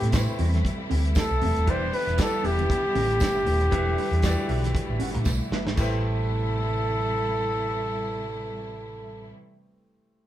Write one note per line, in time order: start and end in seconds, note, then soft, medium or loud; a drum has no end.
0.00 0.23 A2 loud
0.00 1.63 C3 medium
0.00 5.73 E3 medium
0.00 5.73 G3 medium
0.00 0.13 A3 medium
0.00 1.63 A3 medium
0.00 0.13 E4 medium
0.00 5.73 E4 medium
0.00 0.11 G4 medium
0.00 0.13 G4 medium
0.00 0.14 A4 medium
0.00 0.15 B4 medium
0.00 0.14 C5 medium
0.00 0.15 G5 medium
0.00 closed hi-hat medium
0.05 0.14 C4 medium
0.05 0.13 G4 medium
0.12 1.01 A3 medium
0.12 1.01 E4 medium
0.12 1.01 G4 medium
0.12 1.02 B4 medium
0.12 1.01 C5 medium
0.12 kick loud
0.12 snare loud
0.12 closed hi-hat medium
0.12 tambourine loud
0.12 high conga medium
0.28 muted clean electric guitar stroke soft
0.39 0.60 E2 medium
0.39 0.60 C4 medium
0.39 0.54 G4 medium
0.39 0.53 A4 medium
0.39 0.52 E5 medium
0.39 open hi-hat medium
0.54 muted clean electric guitar stroke medium
0.54 snare soft
0.54 closed hi-hat soft
0.54 low conga medium
0.63 muted clean electric guitar stroke soft
0.63 kick loud
0.63 closed hi-hat medium
0.63 muted conga soft
0.78 muted clean electric guitar stroke medium
0.90 1.12 D2 loud
0.90 1.11 C4 medium
0.90 1.04 G4 loud
0.90 1.04 A4 loud
0.90 1.04 G5 loud
0.90 open hi-hat medium
0.90 muted conga soft
1.05 muted clean electric guitar stroke soft
1.05 closed hi-hat soft
1.15 kick loud
1.15 snare loud
1.15 closed hi-hat medium
1.15 tambourine loud
1.15 high conga medium
1.19 1.72 A4 loud
1.31 1.40 C2 medium
1.31 muted clean electric guitar stroke soft
1.42 1.54 E1 loud
1.42 1.63 C4 medium
1.42 1.56 G4 medium
1.42 1.56 A4 medium
1.42 1.55 E5 medium
1.42 open hi-hat medium
1.42 high conga medium
1.56 1.68 D#1 medium
1.56 muted clean electric guitar stroke soft
1.56 closed hi-hat soft
1.67 1.89 E1 loud
1.67 5.74 D3 medium
1.67 2.11 E3 medium
1.67 3.71 B3 medium
1.67 1.88 D4 medium
1.67 2.11 E4 medium
1.67 1.81 G4 medium
1.67 2.12 G4 medium
1.67 1.81 B4 medium
1.67 2.12 B4 medium
1.67 1.96 C5 loud
1.67 2.12 D5 medium
1.67 1.80 E5 medium
1.67 kick medium
1.67 closed hi-hat medium
1.67 muted conga medium
1.81 muted clean electric guitar stroke soft
1.93 2.08 D4 medium
1.93 2.07 G4 medium
1.93 2.07 B4 medium
1.93 2.19 B4 loud
1.93 2.07 G5 medium
1.93 open hi-hat medium
1.93 muted conga soft
2.07 2.16 E1 loud
2.07 2.18 D4 medium
2.07 2.18 G4 medium
2.07 2.18 B4 medium
2.07 2.18 E5 medium
2.07 closed hi-hat medium
2.17 3.06 E3 medium
2.17 3.06 E4 medium
2.17 3.06 G4 medium
2.17 2.47 A4 loud
2.17 3.06 B4 medium
2.17 3.06 D5 medium
2.17 kick loud
2.17 snare loud
2.17 closed hi-hat medium
2.17 tambourine loud
2.17 high conga medium
2.32 muted clean electric guitar stroke medium
2.43 2.66 E1 medium
2.43 2.65 D4 medium
2.43 2.59 G4 medium
2.43 5.27 G4 loud
2.43 2.58 B4 medium
2.43 2.57 E5 medium
2.43 open hi-hat medium
2.58 muted clean electric guitar stroke medium
2.58 closed hi-hat soft
2.58 low conga medium
2.70 muted clean electric guitar stroke medium
2.70 kick loud
2.70 closed hi-hat medium
2.70 muted conga medium
2.84 muted clean electric guitar stroke soft
2.95 3.17 A1 loud
2.95 3.16 D4 medium
2.95 3.09 G4 medium
2.95 3.08 B4 loud
2.95 3.08 E5 loud
2.95 open hi-hat medium
2.95 muted conga soft
2.95 low conga medium
3.09 muted clean electric guitar stroke medium
3.09 closed hi-hat soft
3.20 3.43 G1 loud
3.20 muted clean electric guitar stroke soft
3.20 kick loud
3.20 snare loud
3.20 closed hi-hat medium
3.20 tambourine loud
3.20 high conga medium
3.34 3.44 D4 medium
3.34 3.45 G4 medium
3.34 3.45 B4 medium
3.34 3.45 E5 medium
3.45 3.68 D#1 loud
3.45 muted clean electric guitar stroke soft
3.45 open hi-hat medium
3.45 high conga medium
3.61 muted clean electric guitar stroke soft
3.61 closed hi-hat soft
3.71 3.94 E1 loud
3.71 4.16 E3 medium
3.71 5.76 A3 medium
3.71 3.93 D4 medium
3.71 4.17 E4 medium
3.71 3.85 G4 medium
3.71 4.16 G4 medium
3.71 3.85 B4 medium
3.71 4.17 B4 medium
3.71 4.17 E5 medium
3.71 3.85 G5 medium
3.71 kick loud
3.71 closed hi-hat medium
3.71 muted conga medium
3.85 muted clean electric guitar stroke soft
3.96 4.11 D4 medium
3.96 4.10 G4 medium
3.96 4.10 B4 medium
3.96 4.10 E5 medium
3.96 open hi-hat medium
3.96 muted conga soft
4.10 4.33 E2 loud
4.10 4.22 D4 soft
4.10 4.22 G4 medium
4.10 4.22 B4 medium
4.10 4.23 G5 medium
4.10 closed hi-hat soft
4.22 5.11 E3 medium
4.22 5.12 E4 medium
4.22 4.31 F#4 medium
4.22 5.12 B4 medium
4.22 5.12 D5 loud
4.22 kick loud
4.22 snare loud
4.22 closed hi-hat medium
4.22 tambourine loud
4.22 high conga medium
4.31 5.15 G4 medium
4.37 muted clean electric guitar stroke soft
4.48 4.71 B1 medium
4.48 4.70 D4 medium
4.48 4.63 G4 medium
4.48 4.63 B4 medium
4.48 4.62 E5 medium
4.48 open hi-hat soft
4.63 muted clean electric guitar stroke soft
4.63 snare soft
4.63 closed hi-hat soft
4.63 low conga medium
4.74 muted clean electric guitar stroke soft
4.74 kick loud
4.74 closed hi-hat medium
4.74 muted conga soft
4.89 4.99 A1 medium
4.89 muted clean electric guitar stroke soft
4.99 5.15 G1 medium
4.99 5.21 D4 medium
4.99 5.13 G4 medium
4.99 5.14 B4 medium
4.99 5.14 G5 medium
4.99 open hi-hat medium
4.99 muted conga soft
5.14 5.24 A1 medium
5.14 muted clean electric guitar stroke soft
5.14 closed hi-hat soft
5.25 5.38 B1 loud
5.25 muted clean electric guitar stroke soft
5.25 kick loud
5.25 snare soft
5.25 tambourine medium
5.25 high conga medium
5.41 muted clean electric guitar stroke soft
5.51 5.65 G1 loud
5.51 5.74 D4 medium
5.51 5.67 G4 medium
5.51 5.67 B4 medium
5.51 5.66 E5 loud
5.51 snare medium
5.51 high conga medium
5.65 5.75 G#1 medium
5.65 muted clean electric guitar stroke medium
5.65 snare medium
5.75 9.30 A1 medium
5.75 9.30 C3 medium
5.75 9.30 E3 medium
5.75 9.30 G3 medium
5.75 9.28 A3 medium
5.75 9.30 A3 medium
5.75 9.33 E4 medium
5.75 9.30 E4 medium
5.75 9.31 E4 medium
5.75 9.35 G4 medium
5.75 9.31 G4 medium
5.75 9.31 A4 medium
5.75 kick medium
5.75 china medium
5.75 tambourine medium
5.75 muted conga medium
5.80 9.32 B4 medium
5.80 9.36 C5 medium
5.80 9.34 C5 medium
5.80 9.38 E5 loud